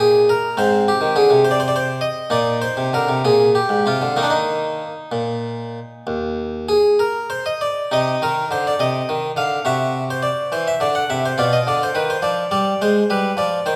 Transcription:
0.00 0.30 A#2 medium
0.00 0.53 D#4 soft
0.00 0.29 G#4 medium
0.29 0.58 A#4 medium
0.57 0.89 G#2 medium
0.57 2.27 C4 soft
0.57 0.83 C5 medium
0.88 1.16 G4 medium
1.01 1.15 D#3 medium
1.16 1.29 D3 medium
1.16 1.40 G#4 medium
1.30 2.03 C3 medium
1.45 1.52 C5 medium
1.51 1.60 D5 medium
1.60 1.68 C5 medium
1.68 1.76 D5 medium
1.76 1.98 C5 loud
2.01 2.31 D#5 medium
2.30 2.64 A#2 medium
2.30 3.19 D#4 soft
2.30 2.57 D5 medium
2.62 2.88 C5 medium
2.77 2.92 C3 medium
2.93 3.08 D3 medium
2.93 3.20 A#4 medium
3.09 3.23 C3 soft
3.25 3.57 A#2 soft
3.25 3.50 G#4 medium
3.55 3.86 G4 medium
3.69 3.84 G#2 soft
3.86 4.00 C3 soft
3.86 4.17 F4 medium
4.01 4.16 D3 soft
4.16 4.82 D#3 soft
4.16 4.92 A#3 soft
4.16 4.24 D#4 medium
4.23 4.31 D4 medium
4.30 7.61 D#4 medium
5.12 5.78 A#2 soft
6.07 6.72 D#2 soft
6.69 6.99 G#4 medium
6.99 7.30 A#4 medium
7.30 7.46 C5 medium
7.46 7.62 D#5 medium
7.61 7.92 D5 medium
7.91 8.13 C3 soft
7.91 9.61 D#4 soft
7.91 8.22 D#5 medium
8.22 8.43 D#3 soft
8.22 8.47 A#4 medium
8.51 8.72 D3 soft
8.51 8.66 C5 medium
8.67 8.81 D5 medium
8.80 9.00 C3 soft
8.80 9.29 D#5 medium
9.09 9.30 D#3 soft
9.37 9.57 D3 soft
9.37 9.66 F5 medium
9.65 10.27 C3 soft
9.65 11.34 F#4 soft
9.65 10.02 E5 medium
10.10 10.24 C5 medium
10.23 10.52 D5 medium
10.52 10.73 E3 soft
10.52 10.67 C5 medium
10.68 10.82 E5 medium
10.80 11.01 D3 soft
10.80 10.96 D5 medium
10.95 11.10 F#5 medium
11.10 11.30 C3 soft
11.10 11.24 E5 medium
11.26 11.39 C5 medium
11.38 11.58 B2 soft
11.38 13.76 F4 soft
11.38 11.52 D5 medium
11.53 11.66 D#5 medium
11.67 11.87 D3 medium
11.67 11.81 D5 medium
11.83 11.96 C5 medium
11.95 12.15 D#3 soft
11.95 12.09 B4 medium
12.10 12.23 C5 medium
12.22 12.43 F3 medium
12.22 12.50 D5 medium
12.51 12.72 G3 medium
12.51 12.80 D5 medium
12.82 13.02 G#3 soft
12.82 13.10 C5 medium
13.10 13.30 G3 soft
13.10 13.38 B4 medium
13.37 13.58 F3 soft
13.37 13.66 D5 medium
13.66 13.76 D#3 soft
13.66 13.76 C5 medium

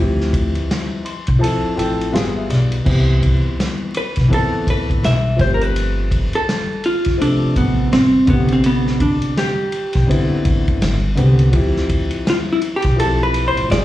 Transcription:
0.00 0.50 D2 medium
0.00 1.06 F3 medium
0.00 1.07 C4 medium
0.00 1.08 E4 medium
0.00 1.08 G4 medium
0.20 snare soft
0.33 kick medium
0.33 ride medium
0.55 ride soft
0.71 snare loud
0.71 hi-hat pedal soft
0.71 ride medium
1.05 1.39 C6 medium
1.05 ride soft
1.27 1.41 B1 medium
1.27 kick medium
1.27 ride soft
1.39 1.70 F3 medium
1.39 1.70 C4 medium
1.39 1.71 E4 medium
1.39 1.72 A4 medium
1.39 1.75 A5 medium
1.44 ride medium
1.63 muted upright bass stroke soft
1.75 2.10 A1 medium
1.75 2.13 F3 medium
1.75 2.13 C4 medium
1.75 2.14 E4 medium
1.75 2.15 A4 medium
1.75 2.11 G5 medium
1.75 ride medium
2.01 ride soft
2.12 2.46 G1 medium
2.12 2.74 G3 medium
2.12 2.74 B3 medium
2.12 2.75 F4 medium
2.12 2.76 G#4 medium
2.12 2.35 F5 medium
2.12 hi-hat pedal medium
2.12 ride medium
2.16 snare loud
2.36 2.49 E5 medium
2.50 2.83 B1 medium
2.50 2.84 D5 medium
2.50 snare soft
2.50 ride medium
2.72 ride soft
2.84 3.39 C2 medium
2.84 3.96 E3 medium
2.84 3.96 B3 medium
2.84 3.97 C4 medium
2.84 3.97 G4 medium
2.84 kick loud
2.84 crash loud
3.22 kick medium
3.22 ride medium
3.60 snare loud
3.60 hi-hat pedal soft
3.60 ride medium
3.94 4.30 B4 medium
3.94 ride medium
4.16 4.30 B1 medium
4.16 kick medium
4.16 snare soft
4.16 ride soft
4.28 5.14 E3 medium
4.28 5.15 B3 medium
4.28 5.16 C4 medium
4.28 5.16 A4 medium
4.28 kick medium
4.33 4.66 A4 medium
4.33 ride medium
4.53 muted upright bass stroke soft
4.67 5.00 A1 medium
4.67 5.02 B4 medium
4.67 kick medium
4.67 ride medium
4.90 kick medium
4.90 ride soft
5.03 5.36 B1 medium
5.03 5.41 E5 medium
5.03 snare loud
5.03 hi-hat pedal soft
5.03 ride medium
5.36 6.24 G1 medium
5.36 6.55 F3 medium
5.36 6.56 A3 medium
5.36 6.56 C4 medium
5.36 6.57 G4 medium
5.36 kick loud
5.36 ride medium
5.41 5.53 C5 medium
5.41 snare soft
5.54 5.63 A#4 medium
5.61 6.35 B4 loud
5.61 ride soft
5.76 ride medium
6.11 kick medium
6.11 ride medium
6.33 6.86 A4 loud
6.33 ride soft
6.49 snare loud
6.49 hi-hat pedal soft
6.49 ride medium
6.84 7.19 F4 medium
6.84 ride medium
7.05 kick medium
7.05 snare soft
7.05 ride soft
7.18 8.05 C3 medium
7.18 8.04 F3 medium
7.18 8.04 A3 medium
7.18 7.54 D4 loud
7.18 8.06 A4 medium
7.18 ride medium
7.42 muted upright bass stroke medium
7.56 7.89 A1 medium
7.56 7.92 B3 medium
7.56 kick medium
7.56 ride medium
7.92 8.25 G1 medium
7.92 8.29 C4 medium
7.92 snare loud
7.92 hi-hat pedal medium
7.92 ride medium
8.26 9.13 A1 loud
8.26 9.46 C3 medium
8.26 9.45 D3 medium
8.26 9.45 B3 medium
8.26 8.52 B3 medium
8.26 9.47 G4 medium
8.26 kick loud
8.26 ride medium
8.48 8.65 C4 medium
8.48 ride soft
8.64 9.01 B3 medium
8.64 ride medium
8.87 snare soft
9.00 9.38 D4 medium
9.00 kick medium
9.00 ride medium
9.22 ride soft
9.37 10.42 G4 medium
9.37 snare loud
9.37 hi-hat pedal soft
9.37 ride medium
9.72 ride medium
9.93 10.08 B1 medium
9.93 kick medium
9.93 snare soft
9.93 ride soft
10.07 10.93 D3 medium
10.07 10.93 B3 medium
10.07 10.94 C4 medium
10.07 10.95 E4 medium
10.07 kick medium
10.11 ride medium
10.31 muted upright bass stroke soft
10.45 10.78 A1 medium
10.45 kick loud
10.45 ride medium
10.68 kick medium
10.68 ride soft
10.82 11.14 G1 medium
10.82 snare loud
10.82 hi-hat pedal soft
10.82 ride medium
11.15 11.51 C2 medium
11.15 11.46 D3 medium
11.15 11.47 B3 medium
11.15 11.47 C4 medium
11.15 11.48 G4 medium
11.15 ride medium
11.39 ride soft
11.52 12.06 D2 medium
11.52 12.63 F3 medium
11.52 12.64 C4 medium
11.52 12.64 E4 medium
11.52 12.65 G4 medium
11.52 kick loud
11.52 ride medium
11.76 snare soft
11.89 kick medium
11.89 ride medium
12.11 ride soft
12.27 12.36 F4 medium
12.27 snare loud
12.27 hi-hat pedal medium
12.27 ride medium
12.52 12.59 E4 medium
12.61 ride medium
12.76 12.99 G4 medium
12.82 13.49 B1 medium
12.82 kick medium
12.82 snare soft
12.82 ride medium
12.96 13.70 F3 medium
12.96 13.70 C4 medium
12.96 13.71 E4 medium
12.96 13.71 G4 medium
12.96 13.22 A4 loud
12.96 ride medium
13.23 13.47 B4 loud
13.34 ride medium
13.48 13.70 C5 loud
13.57 13.69 A1 medium
13.57 ride soft
13.68 13.85 G1 loud
13.68 13.85 G3 medium
13.68 13.85 B3 medium
13.68 13.85 F4 medium
13.68 13.85 D5 loud
13.68 snare loud
13.68 hi-hat pedal soft
13.68 ride medium
13.73 13.85 G#4 medium

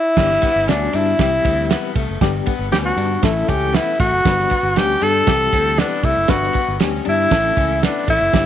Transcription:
0.00 0.71 E4 loud
0.16 0.36 G1 loud
0.16 0.48 D3 medium
0.16 0.49 G3 medium
0.16 0.49 B3 medium
0.16 0.49 D4 medium
0.16 0.49 G4 medium
0.16 kick loud
0.16 snare loud
0.16 crash loud
0.31 snare soft
0.42 0.63 B3 medium
0.42 kick loud
0.42 ride medium
0.56 0.69 G1 medium
0.67 0.87 D2 medium
0.67 1.20 D3 medium
0.67 1.18 G3 medium
0.67 1.20 B3 medium
0.67 0.89 C#4 medium
0.67 0.96 D4 loud
0.67 1.20 D4 medium
0.67 1.20 F#4 medium
0.67 snare medium
0.67 ride medium
0.93 1.13 G2 medium
0.93 1.15 D4 medium
0.93 1.97 E4 loud
0.93 ride medium
1.19 1.38 C2 loud
1.19 2.01 E3 medium
1.19 2.01 G3 medium
1.19 2.01 C4 medium
1.19 2.01 E4 medium
1.19 2.02 G4 medium
1.19 kick loud
1.19 snare loud
1.19 ride medium
1.45 1.73 D2 medium
1.45 1.66 C4 medium
1.45 kick loud
1.45 ride medium
1.70 1.91 B3 medium
1.70 snare loud
1.70 ride medium
1.96 2.05 C2 loud
1.96 2.17 A3 medium
1.96 kick loud
1.96 ride medium
2.09 2.18 F#1 medium
2.21 2.40 G1 loud
2.21 2.53 D3 medium
2.21 2.53 G3 medium
2.21 2.53 B3 medium
2.21 2.53 D4 medium
2.21 2.53 G4 loud
2.21 kick loud
2.21 snare loud
2.21 ride medium
2.46 2.67 B3 medium
2.46 kick loud
2.46 ride medium
2.59 2.69 G1 loud
2.71 2.91 D2 medium
2.71 3.23 D3 medium
2.71 3.23 G3 medium
2.71 3.23 B3 medium
2.71 2.93 C#4 medium
2.71 3.24 D4 medium
2.71 2.78 G4 medium
2.71 3.24 B4 medium
2.71 snare medium
2.71 ride medium
2.85 3.27 F#4 medium
2.97 3.16 G2 medium
2.97 3.19 D4 medium
2.97 ride medium
3.22 3.42 A1 loud
3.22 4.04 E3 medium
3.22 4.05 A3 medium
3.22 4.05 C#4 medium
3.22 4.05 E4 medium
3.22 3.51 E4 medium
3.22 4.05 A4 medium
3.22 kick loud
3.22 snare loud
3.22 ride medium
3.48 3.77 C#2 medium
3.48 3.70 C#4 medium
3.48 3.77 G4 loud
3.48 kick loud
3.48 ride medium
3.73 3.95 B3 medium
3.73 3.99 E4 loud
3.73 snare loud
3.73 ride medium
4.00 4.09 A1 medium
4.00 4.21 A3 medium
4.00 4.79 F#4 loud
4.00 kick loud
4.00 ride medium
4.12 4.22 F#1 medium
4.25 4.44 G1 loud
4.25 4.57 D3 medium
4.25 4.57 G3 medium
4.25 4.57 B3 medium
4.25 4.57 D4 medium
4.25 4.57 B4 medium
4.25 kick loud
4.25 snare loud
4.25 ride medium
4.39 snare soft
4.50 4.72 B3 medium
4.50 kick medium
4.50 ride medium
4.63 4.77 G1 loud
4.76 4.95 D2 medium
4.76 5.27 D3 medium
4.76 5.26 G3 medium
4.76 5.28 B3 medium
4.76 4.97 C#4 medium
4.76 5.28 D4 medium
4.76 5.04 G4 loud
4.76 5.27 G4 medium
4.76 snare medium
4.76 ride medium
5.01 5.21 G2 loud
5.01 5.23 D4 medium
5.01 5.80 A4 loud
5.01 ride medium
5.26 5.46 C2 loud
5.26 6.08 E3 medium
5.26 6.09 G3 medium
5.26 6.09 C4 medium
5.26 6.09 E4 medium
5.26 6.09 G4 medium
5.26 kick loud
5.26 snare loud
5.26 ride medium
5.53 5.81 D2 medium
5.53 5.74 C4 medium
5.53 kick medium
5.53 ride medium
5.78 6.00 B3 medium
5.78 6.06 D4 loud
5.78 snare loud
5.78 ride medium
6.03 6.13 C2 loud
6.03 6.25 A3 medium
6.03 6.32 E4 medium
6.03 kick loud
6.03 ride medium
6.17 6.26 F#1 medium
6.28 6.48 G1 loud
6.28 6.60 D3 medium
6.28 6.61 G3 medium
6.28 6.61 B3 medium
6.28 6.61 D4 medium
6.28 6.79 F#4 loud
6.28 6.61 B4 medium
6.28 kick loud
6.28 snare loud
6.28 ride medium
6.43 snare soft
6.53 6.76 B3 medium
6.53 kick medium
6.53 ride medium
6.68 6.77 G1 loud
6.80 6.99 D2 medium
6.80 7.31 D3 medium
6.80 7.31 G3 medium
6.80 7.31 B3 medium
6.80 7.01 C#4 medium
6.80 7.31 D4 medium
6.80 7.32 G4 medium
6.80 snare loud
6.80 ride medium
7.05 7.25 G2 medium
7.05 7.27 D4 medium
7.05 ride medium
7.09 7.86 E4 loud
7.31 7.50 A1 loud
7.31 8.13 E3 medium
7.31 8.13 A3 medium
7.31 8.13 C#4 medium
7.31 8.13 E4 medium
7.31 8.13 A4 medium
7.31 kick loud
7.31 snare loud
7.31 ride medium
7.57 7.85 C#2 medium
7.57 7.78 C#4 medium
7.57 kick loud
7.57 ride medium
7.83 8.03 B3 medium
7.83 8.09 D4 loud
7.83 snare loud
7.83 ride medium
8.08 8.17 A1 medium
8.08 8.29 A3 medium
8.08 8.46 E4 loud
8.08 kick medium
8.08 ride medium
8.20 8.30 F#1 medium
8.33 8.46 G1 loud
8.33 8.46 D3 medium
8.33 8.46 G3 medium
8.33 8.46 B3 medium
8.33 8.46 D4 medium
8.33 8.46 G4 medium
8.33 kick loud
8.33 snare loud
8.33 ride medium
8.33 tambourine soft

